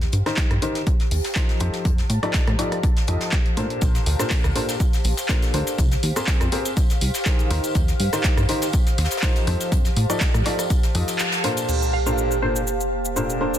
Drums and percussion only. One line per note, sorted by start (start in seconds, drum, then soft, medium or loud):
0.01 snare soft
0.01 closed hi-hat soft
0.12 closed hi-hat medium
0.26 cross-stick medium
0.26 snare soft
0.26 closed hi-hat soft
0.37 kick loud
0.37 snare loud
0.37 clap loud
0.37 closed hi-hat medium
0.51 cross-stick medium
0.51 closed hi-hat soft
0.62 closed hi-hat medium
0.75 snare soft
0.75 closed hi-hat soft
0.86 kick loud
0.86 closed hi-hat medium
1.00 snare soft
1.00 closed hi-hat soft
1.11 closed hi-hat medium
1.11 open hi-hat medium
1.24 snare soft
1.24 closed hi-hat soft
1.35 kick loud
1.35 snare loud
1.35 clap loud
1.35 closed hi-hat medium
1.49 snare medium
1.49 closed hi-hat soft
1.60 closed hi-hat medium
1.73 snare soft
1.73 closed hi-hat soft
1.85 kick loud
1.85 closed hi-hat medium
1.98 snare soft
1.98 closed hi-hat soft
2.10 closed hi-hat medium
2.23 cross-stick medium
2.23 closed hi-hat soft
2.34 kick loud
2.34 snare loud
2.34 clap loud
2.34 closed hi-hat medium
2.47 cross-stick medium
2.47 closed hi-hat soft
2.59 closed hi-hat medium
2.72 cross-stick medium
2.72 closed hi-hat soft
2.83 kick loud
2.83 closed hi-hat medium
2.97 snare medium
2.97 closed hi-hat soft
3.07 closed hi-hat medium
3.21 snare medium
3.21 closed hi-hat soft
3.32 kick loud
3.32 snare loud
3.32 clap loud
3.32 closed hi-hat medium
3.46 closed hi-hat soft
3.57 snare medium
3.57 closed hi-hat medium
3.70 closed hi-hat soft
3.81 kick loud
3.81 closed hi-hat medium
3.81 tambourine medium
3.81 shaker medium
3.95 snare soft
3.95 closed hi-hat soft
3.95 tambourine soft
3.95 shaker soft
4.06 closed hi-hat medium
4.06 open hi-hat loud
4.19 cross-stick medium
4.19 snare medium
4.19 closed hi-hat soft
4.19 tambourine medium
4.19 shaker medium
4.31 kick loud
4.31 snare loud
4.31 clap loud
4.31 closed hi-hat medium
4.31 tambourine medium
4.31 shaker medium
4.44 cross-stick medium
4.44 closed hi-hat soft
4.44 tambourine soft
4.44 shaker soft
4.55 closed hi-hat medium
4.55 open hi-hat loud
4.69 snare soft
4.69 closed hi-hat soft
4.69 tambourine medium
4.69 shaker medium
4.80 kick loud
4.80 closed hi-hat medium
4.80 tambourine medium
4.80 shaker medium
4.93 snare soft
4.93 closed hi-hat soft
4.93 tambourine soft
4.93 shaker soft
5.04 open hi-hat medium
5.04 open hi-hat loud
5.17 snare soft
5.17 closed hi-hat soft
5.17 tambourine medium
5.17 shaker medium
5.29 kick loud
5.29 snare loud
5.29 clap loud
5.29 closed hi-hat medium
5.29 shaker medium
5.42 snare medium
5.42 closed hi-hat soft
5.42 tambourine soft
5.42 shaker soft
5.53 closed hi-hat medium
5.53 open hi-hat loud
5.67 snare soft
5.67 closed hi-hat soft
5.67 tambourine medium
5.67 shaker medium
5.78 kick loud
5.78 closed hi-hat loud
5.78 closed hi-hat medium
5.78 tambourine medium
5.78 shaker medium
5.91 snare soft
5.91 closed hi-hat soft
5.91 tambourine soft
5.91 shaker soft
6.03 closed hi-hat medium
6.03 open hi-hat loud
6.16 cross-stick medium
6.16 closed hi-hat soft
6.16 tambourine medium
6.16 shaker medium
6.27 kick loud
6.27 snare loud
6.27 clap loud
6.27 closed hi-hat medium
6.27 tambourine medium
6.27 shaker medium
6.41 cross-stick medium
6.41 closed hi-hat soft
6.41 tambourine soft
6.41 shaker soft
6.52 closed hi-hat medium
6.52 open hi-hat loud
6.65 closed hi-hat soft
6.65 tambourine medium
6.65 shaker medium
6.77 kick loud
6.77 closed hi-hat medium
6.77 tambourine medium
6.77 shaker medium
6.90 snare medium
6.90 closed hi-hat soft
6.90 tambourine soft
6.90 shaker soft
7.01 closed hi-hat medium
7.01 open hi-hat loud
7.14 snare medium
7.14 closed hi-hat soft
7.14 tambourine medium
7.14 shaker medium
7.25 kick loud
7.25 snare loud
7.25 clap loud
7.25 closed hi-hat medium
7.25 tambourine medium
7.25 shaker medium
7.39 closed hi-hat soft
7.39 tambourine soft
7.39 shaker soft
7.50 snare medium
7.50 closed hi-hat medium
7.50 open hi-hat loud
7.64 closed hi-hat soft
7.64 tambourine medium
7.64 shaker medium
7.75 kick loud
7.75 closed hi-hat loud
7.75 closed hi-hat medium
7.75 tambourine medium
7.75 shaker medium
7.88 snare soft
7.88 closed hi-hat soft
7.88 tambourine soft
7.88 shaker soft
8.00 closed hi-hat medium
8.00 open hi-hat loud
8.13 cross-stick medium
8.13 snare medium
8.13 closed hi-hat soft
8.13 tambourine medium
8.13 shaker medium
8.24 kick loud
8.24 snare loud
8.24 clap loud
8.24 closed hi-hat loud
8.24 closed hi-hat medium
8.24 tambourine medium
8.24 shaker medium
8.37 cross-stick medium
8.37 closed hi-hat soft
8.37 tambourine soft
8.37 shaker soft
8.49 closed hi-hat medium
8.49 open hi-hat loud
8.62 snare soft
8.62 closed hi-hat soft
8.62 tambourine medium
8.62 shaker medium
8.73 kick loud
8.73 closed hi-hat medium
8.73 tambourine medium
8.73 shaker medium
8.86 snare soft
8.86 closed hi-hat soft
8.86 tambourine soft
8.86 shaker soft
8.98 snare medium
8.98 closed hi-hat medium
8.98 open hi-hat loud
9.05 snare medium
9.05 closed hi-hat medium
9.11 snare medium
9.11 closed hi-hat soft
9.11 closed hi-hat medium
9.11 tambourine medium
9.11 shaker medium
9.17 snare medium
9.17 closed hi-hat medium
9.22 kick loud
9.22 snare loud
9.22 clap loud
9.22 closed hi-hat medium
9.22 tambourine medium
9.22 shaker medium
9.36 snare medium
9.36 closed hi-hat soft
9.36 tambourine soft
9.36 shaker soft
9.47 closed hi-hat medium
9.47 open hi-hat loud
9.61 snare soft
9.61 closed hi-hat soft
9.61 tambourine medium
9.61 shaker medium
9.72 kick loud
9.72 closed hi-hat medium
9.72 closed hi-hat loud
9.72 tambourine medium
9.72 shaker medium
9.85 snare soft
9.85 closed hi-hat soft
9.85 tambourine soft
9.85 shaker soft
9.96 closed hi-hat medium
9.96 open hi-hat loud
10.10 cross-stick medium
10.10 closed hi-hat soft
10.10 tambourine medium
10.10 shaker medium
10.21 kick loud
10.21 snare loud
10.21 clap loud
10.21 closed hi-hat medium
10.21 tambourine medium
10.21 shaker medium
10.34 cross-stick medium
10.34 closed hi-hat soft
10.34 tambourine soft
10.34 shaker soft
10.45 clap soft
10.45 closed hi-hat medium
10.45 open hi-hat loud
10.59 cross-stick medium
10.59 closed hi-hat soft
10.59 tambourine medium
10.59 shaker medium
10.70 kick loud
10.70 closed hi-hat medium
10.70 tambourine medium
10.70 shaker medium
10.83 snare medium
10.83 closed hi-hat soft
10.83 tambourine soft
10.83 shaker soft
10.95 closed hi-hat medium
10.95 open hi-hat loud
11.08 snare medium
11.08 closed hi-hat soft
11.08 tambourine medium
11.08 shaker medium
11.19 snare loud
11.19 clap loud
11.19 closed hi-hat medium
11.19 tambourine medium
11.19 shaker medium
11.32 snare loud
11.32 closed hi-hat medium
11.32 closed hi-hat soft
11.32 tambourine soft
11.32 shaker soft
11.44 snare soft
11.44 closed hi-hat medium
11.44 open hi-hat loud
11.57 closed hi-hat soft
11.57 tambourine medium
11.57 shaker medium
11.69 crash medium
11.69 shaker medium
11.82 shaker soft
12.07 shaker medium
12.18 shaker medium
12.31 shaker soft
12.56 shaker medium
12.67 shaker medium
12.81 shaker soft
13.05 shaker medium
13.17 shaker medium
13.30 shaker soft
13.54 shaker medium